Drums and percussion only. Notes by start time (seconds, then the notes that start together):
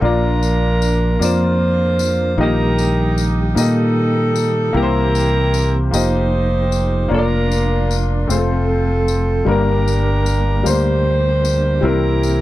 0.43 tambourine
0.82 tambourine
1.22 tambourine
1.99 tambourine
2.78 tambourine
3.18 tambourine
3.57 tambourine
4.36 tambourine
5.15 tambourine
5.54 tambourine
5.94 tambourine
6.72 tambourine
7.51 tambourine
7.91 tambourine
8.30 tambourine
9.08 tambourine
9.88 tambourine
10.26 tambourine
10.66 tambourine
11.45 tambourine
12.23 tambourine